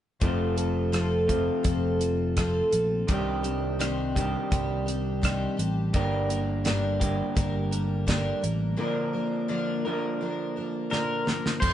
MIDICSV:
0, 0, Header, 1, 6, 480
1, 0, Start_track
1, 0, Tempo, 713436
1, 142, Time_signature, 4, 2, 24, 8
1, 7894, End_track
2, 0, Start_track
2, 0, Title_t, "Pedal steel guitar"
2, 0, Program_c, 0, 26
2, 7805, Note_on_c, 0, 72, 75
2, 7894, Note_off_c, 0, 72, 0
2, 7894, End_track
3, 0, Start_track
3, 0, Title_t, "Twelve-string acoustic guitar"
3, 0, Program_c, 1, 25
3, 135, Note_on_c, 1, 53, 58
3, 140, Note_on_c, 1, 60, 66
3, 143, Note_on_c, 1, 65, 65
3, 146, Note_on_c, 1, 69, 68
3, 371, Note_off_c, 1, 69, 0
3, 375, Note_off_c, 1, 65, 0
3, 379, Note_on_c, 1, 69, 50
3, 380, Note_off_c, 1, 53, 0
3, 382, Note_off_c, 1, 60, 0
3, 383, Note_on_c, 1, 65, 43
3, 394, Note_on_c, 1, 60, 41
3, 614, Note_off_c, 1, 60, 0
3, 620, Note_on_c, 1, 53, 75
3, 621, Note_off_c, 1, 69, 0
3, 622, Note_off_c, 1, 65, 0
3, 622, Note_on_c, 1, 60, 76
3, 629, Note_on_c, 1, 69, 80
3, 630, Note_on_c, 1, 65, 70
3, 858, Note_off_c, 1, 69, 0
3, 864, Note_off_c, 1, 53, 0
3, 865, Note_off_c, 1, 60, 0
3, 866, Note_off_c, 1, 65, 0
3, 866, Note_on_c, 1, 69, 50
3, 875, Note_on_c, 1, 65, 42
3, 885, Note_on_c, 1, 60, 39
3, 1095, Note_off_c, 1, 60, 0
3, 1097, Note_on_c, 1, 53, 58
3, 1103, Note_on_c, 1, 60, 53
3, 1104, Note_off_c, 1, 65, 0
3, 1108, Note_off_c, 1, 69, 0
3, 1112, Note_on_c, 1, 65, 55
3, 1117, Note_on_c, 1, 69, 62
3, 1333, Note_off_c, 1, 69, 0
3, 1339, Note_off_c, 1, 65, 0
3, 1341, Note_on_c, 1, 69, 46
3, 1344, Note_off_c, 1, 53, 0
3, 1345, Note_off_c, 1, 60, 0
3, 1348, Note_on_c, 1, 65, 41
3, 1353, Note_on_c, 1, 60, 36
3, 1586, Note_off_c, 1, 60, 0
3, 1586, Note_off_c, 1, 69, 0
3, 1589, Note_off_c, 1, 65, 0
3, 1592, Note_on_c, 1, 53, 66
3, 1594, Note_on_c, 1, 60, 75
3, 1600, Note_on_c, 1, 65, 74
3, 1602, Note_on_c, 1, 69, 84
3, 1814, Note_off_c, 1, 69, 0
3, 1822, Note_off_c, 1, 65, 0
3, 1822, Note_on_c, 1, 69, 42
3, 1826, Note_off_c, 1, 60, 0
3, 1830, Note_on_c, 1, 65, 43
3, 1832, Note_off_c, 1, 53, 0
3, 1834, Note_on_c, 1, 60, 35
3, 2067, Note_off_c, 1, 69, 0
3, 2070, Note_on_c, 1, 48, 73
3, 2071, Note_off_c, 1, 60, 0
3, 2072, Note_off_c, 1, 65, 0
3, 2073, Note_on_c, 1, 55, 70
3, 2076, Note_on_c, 1, 51, 67
3, 2078, Note_on_c, 1, 67, 77
3, 2079, Note_on_c, 1, 60, 71
3, 2079, Note_on_c, 1, 62, 67
3, 2300, Note_off_c, 1, 67, 0
3, 2304, Note_off_c, 1, 62, 0
3, 2308, Note_on_c, 1, 67, 50
3, 2311, Note_off_c, 1, 60, 0
3, 2312, Note_off_c, 1, 48, 0
3, 2312, Note_on_c, 1, 62, 47
3, 2313, Note_off_c, 1, 55, 0
3, 2315, Note_off_c, 1, 51, 0
3, 2319, Note_on_c, 1, 60, 40
3, 2322, Note_on_c, 1, 55, 37
3, 2545, Note_off_c, 1, 55, 0
3, 2548, Note_off_c, 1, 62, 0
3, 2550, Note_off_c, 1, 60, 0
3, 2551, Note_off_c, 1, 67, 0
3, 2551, Note_on_c, 1, 48, 75
3, 2551, Note_on_c, 1, 51, 68
3, 2553, Note_on_c, 1, 55, 71
3, 2556, Note_on_c, 1, 62, 83
3, 2558, Note_on_c, 1, 60, 81
3, 2561, Note_on_c, 1, 67, 73
3, 2787, Note_off_c, 1, 67, 0
3, 2792, Note_off_c, 1, 62, 0
3, 2793, Note_off_c, 1, 48, 0
3, 2793, Note_off_c, 1, 51, 0
3, 2794, Note_off_c, 1, 55, 0
3, 2795, Note_on_c, 1, 67, 50
3, 2796, Note_off_c, 1, 60, 0
3, 2800, Note_on_c, 1, 62, 52
3, 2803, Note_on_c, 1, 60, 38
3, 2809, Note_on_c, 1, 55, 44
3, 3023, Note_off_c, 1, 55, 0
3, 3029, Note_off_c, 1, 60, 0
3, 3031, Note_off_c, 1, 62, 0
3, 3031, Note_on_c, 1, 55, 53
3, 3032, Note_off_c, 1, 67, 0
3, 3037, Note_on_c, 1, 60, 49
3, 3040, Note_on_c, 1, 62, 55
3, 3040, Note_on_c, 1, 67, 59
3, 3260, Note_off_c, 1, 67, 0
3, 3267, Note_off_c, 1, 62, 0
3, 3268, Note_on_c, 1, 67, 49
3, 3269, Note_off_c, 1, 60, 0
3, 3273, Note_off_c, 1, 55, 0
3, 3275, Note_on_c, 1, 62, 43
3, 3277, Note_on_c, 1, 60, 42
3, 3284, Note_on_c, 1, 55, 33
3, 3508, Note_on_c, 1, 48, 63
3, 3510, Note_off_c, 1, 62, 0
3, 3511, Note_off_c, 1, 67, 0
3, 3512, Note_off_c, 1, 55, 0
3, 3513, Note_off_c, 1, 60, 0
3, 3515, Note_on_c, 1, 51, 75
3, 3518, Note_on_c, 1, 62, 74
3, 3520, Note_on_c, 1, 55, 82
3, 3521, Note_on_c, 1, 60, 67
3, 3523, Note_on_c, 1, 67, 78
3, 3739, Note_off_c, 1, 67, 0
3, 3747, Note_off_c, 1, 62, 0
3, 3747, Note_on_c, 1, 67, 48
3, 3752, Note_off_c, 1, 48, 0
3, 3753, Note_off_c, 1, 60, 0
3, 3755, Note_off_c, 1, 51, 0
3, 3755, Note_on_c, 1, 62, 43
3, 3757, Note_off_c, 1, 55, 0
3, 3761, Note_on_c, 1, 60, 39
3, 3765, Note_on_c, 1, 55, 41
3, 3987, Note_off_c, 1, 55, 0
3, 3991, Note_off_c, 1, 67, 0
3, 3991, Note_on_c, 1, 43, 62
3, 3992, Note_off_c, 1, 62, 0
3, 3993, Note_on_c, 1, 50, 61
3, 3995, Note_on_c, 1, 55, 70
3, 3996, Note_off_c, 1, 60, 0
3, 3999, Note_on_c, 1, 58, 73
3, 4001, Note_on_c, 1, 62, 73
3, 4001, Note_on_c, 1, 70, 75
3, 4225, Note_off_c, 1, 70, 0
3, 4230, Note_off_c, 1, 62, 0
3, 4233, Note_off_c, 1, 43, 0
3, 4233, Note_off_c, 1, 58, 0
3, 4233, Note_on_c, 1, 70, 51
3, 4234, Note_off_c, 1, 50, 0
3, 4235, Note_off_c, 1, 55, 0
3, 4238, Note_on_c, 1, 62, 50
3, 4241, Note_on_c, 1, 58, 43
3, 4249, Note_on_c, 1, 55, 44
3, 4466, Note_off_c, 1, 55, 0
3, 4467, Note_off_c, 1, 58, 0
3, 4469, Note_on_c, 1, 43, 74
3, 4472, Note_off_c, 1, 62, 0
3, 4473, Note_on_c, 1, 50, 72
3, 4474, Note_off_c, 1, 70, 0
3, 4474, Note_on_c, 1, 55, 73
3, 4475, Note_on_c, 1, 58, 74
3, 4480, Note_on_c, 1, 62, 80
3, 4482, Note_on_c, 1, 70, 75
3, 4703, Note_off_c, 1, 70, 0
3, 4706, Note_off_c, 1, 62, 0
3, 4711, Note_off_c, 1, 43, 0
3, 4711, Note_off_c, 1, 58, 0
3, 4712, Note_on_c, 1, 70, 46
3, 4713, Note_off_c, 1, 50, 0
3, 4713, Note_off_c, 1, 55, 0
3, 4714, Note_on_c, 1, 62, 49
3, 4719, Note_on_c, 1, 58, 40
3, 4729, Note_on_c, 1, 55, 38
3, 4938, Note_off_c, 1, 55, 0
3, 4941, Note_off_c, 1, 58, 0
3, 4946, Note_on_c, 1, 55, 54
3, 4947, Note_off_c, 1, 62, 0
3, 4949, Note_off_c, 1, 70, 0
3, 4949, Note_on_c, 1, 58, 54
3, 4955, Note_on_c, 1, 62, 59
3, 4957, Note_on_c, 1, 70, 61
3, 5180, Note_off_c, 1, 70, 0
3, 5187, Note_off_c, 1, 62, 0
3, 5188, Note_off_c, 1, 58, 0
3, 5188, Note_on_c, 1, 70, 43
3, 5189, Note_off_c, 1, 55, 0
3, 5195, Note_on_c, 1, 62, 45
3, 5196, Note_on_c, 1, 58, 45
3, 5201, Note_on_c, 1, 55, 40
3, 5422, Note_off_c, 1, 55, 0
3, 5425, Note_off_c, 1, 62, 0
3, 5426, Note_off_c, 1, 58, 0
3, 5426, Note_on_c, 1, 43, 76
3, 5428, Note_on_c, 1, 50, 78
3, 5429, Note_off_c, 1, 70, 0
3, 5431, Note_on_c, 1, 55, 83
3, 5433, Note_on_c, 1, 62, 85
3, 5434, Note_on_c, 1, 58, 78
3, 5440, Note_on_c, 1, 70, 81
3, 5655, Note_off_c, 1, 70, 0
3, 5662, Note_off_c, 1, 62, 0
3, 5664, Note_off_c, 1, 58, 0
3, 5664, Note_on_c, 1, 70, 48
3, 5668, Note_off_c, 1, 43, 0
3, 5669, Note_off_c, 1, 50, 0
3, 5670, Note_off_c, 1, 55, 0
3, 5670, Note_on_c, 1, 62, 47
3, 5672, Note_on_c, 1, 58, 39
3, 5680, Note_on_c, 1, 55, 43
3, 5895, Note_off_c, 1, 58, 0
3, 5897, Note_on_c, 1, 46, 64
3, 5899, Note_off_c, 1, 70, 0
3, 5901, Note_off_c, 1, 55, 0
3, 5901, Note_on_c, 1, 50, 70
3, 5902, Note_off_c, 1, 62, 0
3, 5903, Note_on_c, 1, 53, 70
3, 5903, Note_on_c, 1, 58, 67
3, 5907, Note_on_c, 1, 70, 70
3, 5910, Note_on_c, 1, 62, 67
3, 6136, Note_off_c, 1, 70, 0
3, 6142, Note_off_c, 1, 46, 0
3, 6143, Note_off_c, 1, 62, 0
3, 6144, Note_off_c, 1, 50, 0
3, 6144, Note_on_c, 1, 70, 49
3, 6145, Note_off_c, 1, 53, 0
3, 6145, Note_off_c, 1, 58, 0
3, 6151, Note_on_c, 1, 62, 53
3, 6155, Note_on_c, 1, 58, 45
3, 6161, Note_on_c, 1, 53, 37
3, 6376, Note_off_c, 1, 62, 0
3, 6377, Note_off_c, 1, 53, 0
3, 6378, Note_off_c, 1, 58, 0
3, 6380, Note_on_c, 1, 46, 76
3, 6381, Note_off_c, 1, 70, 0
3, 6383, Note_on_c, 1, 50, 71
3, 6384, Note_on_c, 1, 62, 81
3, 6385, Note_on_c, 1, 53, 78
3, 6386, Note_on_c, 1, 58, 76
3, 6389, Note_on_c, 1, 70, 78
3, 6618, Note_off_c, 1, 70, 0
3, 6622, Note_off_c, 1, 46, 0
3, 6623, Note_off_c, 1, 50, 0
3, 6624, Note_off_c, 1, 62, 0
3, 6625, Note_off_c, 1, 53, 0
3, 6625, Note_off_c, 1, 58, 0
3, 6626, Note_on_c, 1, 70, 52
3, 6634, Note_on_c, 1, 62, 46
3, 6639, Note_on_c, 1, 58, 43
3, 6643, Note_on_c, 1, 53, 39
3, 6859, Note_off_c, 1, 53, 0
3, 6863, Note_off_c, 1, 58, 0
3, 6864, Note_off_c, 1, 70, 0
3, 6867, Note_on_c, 1, 53, 57
3, 6868, Note_off_c, 1, 62, 0
3, 6871, Note_on_c, 1, 58, 56
3, 6876, Note_on_c, 1, 62, 57
3, 6881, Note_on_c, 1, 70, 52
3, 7097, Note_off_c, 1, 70, 0
3, 7103, Note_off_c, 1, 58, 0
3, 7104, Note_off_c, 1, 53, 0
3, 7105, Note_off_c, 1, 62, 0
3, 7105, Note_on_c, 1, 70, 43
3, 7111, Note_on_c, 1, 58, 39
3, 7113, Note_on_c, 1, 62, 42
3, 7119, Note_on_c, 1, 53, 37
3, 7330, Note_off_c, 1, 53, 0
3, 7332, Note_on_c, 1, 46, 70
3, 7336, Note_on_c, 1, 50, 77
3, 7337, Note_off_c, 1, 58, 0
3, 7338, Note_off_c, 1, 62, 0
3, 7338, Note_on_c, 1, 53, 77
3, 7340, Note_off_c, 1, 70, 0
3, 7345, Note_on_c, 1, 58, 81
3, 7346, Note_on_c, 1, 62, 72
3, 7348, Note_on_c, 1, 70, 82
3, 7559, Note_off_c, 1, 70, 0
3, 7567, Note_off_c, 1, 62, 0
3, 7567, Note_on_c, 1, 70, 47
3, 7574, Note_off_c, 1, 53, 0
3, 7575, Note_off_c, 1, 46, 0
3, 7575, Note_off_c, 1, 58, 0
3, 7575, Note_on_c, 1, 62, 43
3, 7577, Note_off_c, 1, 50, 0
3, 7582, Note_on_c, 1, 53, 36
3, 7584, Note_on_c, 1, 58, 42
3, 7794, Note_off_c, 1, 53, 0
3, 7801, Note_off_c, 1, 58, 0
3, 7803, Note_on_c, 1, 53, 65
3, 7804, Note_on_c, 1, 60, 67
3, 7808, Note_off_c, 1, 70, 0
3, 7809, Note_off_c, 1, 62, 0
3, 7811, Note_on_c, 1, 65, 65
3, 7811, Note_on_c, 1, 69, 68
3, 7894, Note_off_c, 1, 53, 0
3, 7894, Note_off_c, 1, 60, 0
3, 7894, Note_off_c, 1, 65, 0
3, 7894, Note_off_c, 1, 69, 0
3, 7894, End_track
4, 0, Start_track
4, 0, Title_t, "Clean electric guitar"
4, 0, Program_c, 2, 27
4, 144, Note_on_c, 2, 41, 66
4, 148, Note_on_c, 2, 48, 73
4, 158, Note_on_c, 2, 57, 72
4, 853, Note_off_c, 2, 41, 0
4, 855, Note_off_c, 2, 48, 0
4, 860, Note_off_c, 2, 57, 0
4, 867, Note_on_c, 2, 57, 65
4, 871, Note_on_c, 2, 53, 57
4, 875, Note_on_c, 2, 48, 60
4, 876, Note_on_c, 2, 41, 54
4, 2058, Note_off_c, 2, 57, 0
4, 2060, Note_off_c, 2, 48, 0
4, 2060, Note_off_c, 2, 53, 0
4, 2062, Note_off_c, 2, 41, 0
4, 2810, Note_on_c, 2, 51, 57
4, 2815, Note_on_c, 2, 48, 55
4, 3988, Note_off_c, 2, 48, 0
4, 3988, Note_off_c, 2, 51, 0
4, 4007, Note_on_c, 2, 67, 88
4, 4699, Note_off_c, 2, 67, 0
4, 4707, Note_on_c, 2, 67, 77
4, 4723, Note_on_c, 2, 50, 61
4, 4724, Note_on_c, 2, 43, 58
4, 5892, Note_off_c, 2, 67, 0
4, 5900, Note_off_c, 2, 43, 0
4, 5900, Note_off_c, 2, 50, 0
4, 6643, Note_on_c, 2, 46, 57
4, 6645, Note_on_c, 2, 50, 59
4, 7812, Note_off_c, 2, 46, 0
4, 7813, Note_off_c, 2, 50, 0
4, 7821, Note_on_c, 2, 41, 61
4, 7894, Note_off_c, 2, 41, 0
4, 7894, End_track
5, 0, Start_track
5, 0, Title_t, "Fingered electric bass"
5, 0, Program_c, 3, 33
5, 147, Note_on_c, 3, 29, 67
5, 999, Note_off_c, 3, 29, 0
5, 1110, Note_on_c, 3, 29, 72
5, 1749, Note_off_c, 3, 29, 0
5, 1836, Note_on_c, 3, 34, 78
5, 2047, Note_off_c, 3, 34, 0
5, 2079, Note_on_c, 3, 36, 79
5, 2927, Note_off_c, 3, 36, 0
5, 3040, Note_on_c, 3, 36, 72
5, 3675, Note_off_c, 3, 36, 0
5, 3758, Note_on_c, 3, 33, 72
5, 3969, Note_off_c, 3, 33, 0
5, 4001, Note_on_c, 3, 31, 76
5, 4846, Note_off_c, 3, 31, 0
5, 4956, Note_on_c, 3, 31, 77
5, 5590, Note_off_c, 3, 31, 0
5, 5676, Note_on_c, 3, 33, 73
5, 5885, Note_off_c, 3, 33, 0
5, 7825, Note_on_c, 3, 29, 75
5, 7894, Note_off_c, 3, 29, 0
5, 7894, End_track
6, 0, Start_track
6, 0, Title_t, "Drums"
6, 144, Note_on_c, 9, 42, 58
6, 146, Note_on_c, 9, 36, 82
6, 211, Note_off_c, 9, 42, 0
6, 213, Note_off_c, 9, 36, 0
6, 388, Note_on_c, 9, 42, 51
6, 455, Note_off_c, 9, 42, 0
6, 628, Note_on_c, 9, 42, 61
6, 635, Note_on_c, 9, 37, 81
6, 695, Note_off_c, 9, 42, 0
6, 702, Note_off_c, 9, 37, 0
6, 869, Note_on_c, 9, 36, 70
6, 870, Note_on_c, 9, 42, 57
6, 936, Note_off_c, 9, 36, 0
6, 937, Note_off_c, 9, 42, 0
6, 1106, Note_on_c, 9, 42, 73
6, 1109, Note_on_c, 9, 36, 97
6, 1174, Note_off_c, 9, 42, 0
6, 1177, Note_off_c, 9, 36, 0
6, 1352, Note_on_c, 9, 42, 55
6, 1419, Note_off_c, 9, 42, 0
6, 1592, Note_on_c, 9, 42, 73
6, 1595, Note_on_c, 9, 36, 68
6, 1599, Note_on_c, 9, 37, 88
6, 1660, Note_off_c, 9, 42, 0
6, 1662, Note_off_c, 9, 36, 0
6, 1666, Note_off_c, 9, 37, 0
6, 1834, Note_on_c, 9, 42, 54
6, 1901, Note_off_c, 9, 42, 0
6, 2075, Note_on_c, 9, 42, 66
6, 2078, Note_on_c, 9, 36, 90
6, 2142, Note_off_c, 9, 42, 0
6, 2145, Note_off_c, 9, 36, 0
6, 2316, Note_on_c, 9, 42, 43
6, 2383, Note_off_c, 9, 42, 0
6, 2560, Note_on_c, 9, 42, 63
6, 2567, Note_on_c, 9, 37, 89
6, 2627, Note_off_c, 9, 42, 0
6, 2634, Note_off_c, 9, 37, 0
6, 2801, Note_on_c, 9, 36, 67
6, 2806, Note_on_c, 9, 42, 54
6, 2868, Note_off_c, 9, 36, 0
6, 2873, Note_off_c, 9, 42, 0
6, 3040, Note_on_c, 9, 36, 88
6, 3041, Note_on_c, 9, 42, 65
6, 3108, Note_off_c, 9, 36, 0
6, 3108, Note_off_c, 9, 42, 0
6, 3284, Note_on_c, 9, 42, 47
6, 3352, Note_off_c, 9, 42, 0
6, 3520, Note_on_c, 9, 36, 64
6, 3525, Note_on_c, 9, 42, 68
6, 3532, Note_on_c, 9, 37, 93
6, 3588, Note_off_c, 9, 36, 0
6, 3592, Note_off_c, 9, 42, 0
6, 3599, Note_off_c, 9, 37, 0
6, 3763, Note_on_c, 9, 42, 51
6, 3830, Note_off_c, 9, 42, 0
6, 3995, Note_on_c, 9, 42, 57
6, 3997, Note_on_c, 9, 36, 80
6, 4063, Note_off_c, 9, 42, 0
6, 4065, Note_off_c, 9, 36, 0
6, 4240, Note_on_c, 9, 42, 44
6, 4307, Note_off_c, 9, 42, 0
6, 4474, Note_on_c, 9, 42, 66
6, 4481, Note_on_c, 9, 38, 82
6, 4541, Note_off_c, 9, 42, 0
6, 4548, Note_off_c, 9, 38, 0
6, 4718, Note_on_c, 9, 36, 70
6, 4719, Note_on_c, 9, 42, 55
6, 4785, Note_off_c, 9, 36, 0
6, 4786, Note_off_c, 9, 42, 0
6, 4956, Note_on_c, 9, 36, 97
6, 4956, Note_on_c, 9, 42, 78
6, 5023, Note_off_c, 9, 36, 0
6, 5023, Note_off_c, 9, 42, 0
6, 5197, Note_on_c, 9, 42, 51
6, 5265, Note_off_c, 9, 42, 0
6, 5435, Note_on_c, 9, 36, 68
6, 5436, Note_on_c, 9, 42, 79
6, 5443, Note_on_c, 9, 38, 101
6, 5502, Note_off_c, 9, 36, 0
6, 5504, Note_off_c, 9, 42, 0
6, 5510, Note_off_c, 9, 38, 0
6, 5676, Note_on_c, 9, 42, 53
6, 5744, Note_off_c, 9, 42, 0
6, 7351, Note_on_c, 9, 38, 51
6, 7418, Note_off_c, 9, 38, 0
6, 7584, Note_on_c, 9, 38, 69
6, 7652, Note_off_c, 9, 38, 0
6, 7709, Note_on_c, 9, 38, 67
6, 7776, Note_off_c, 9, 38, 0
6, 7819, Note_on_c, 9, 36, 83
6, 7821, Note_on_c, 9, 49, 79
6, 7886, Note_off_c, 9, 36, 0
6, 7888, Note_off_c, 9, 49, 0
6, 7894, End_track
0, 0, End_of_file